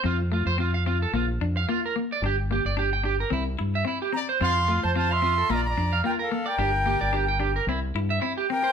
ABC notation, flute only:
X:1
M:4/4
L:1/16
Q:"Swing 16ths" 1/4=110
K:F
V:1 name="Flute"
z16 | z12 z2 b2 | c'3 a a c'3 b b3 g f2 g- | g6- g z6 z g2 |]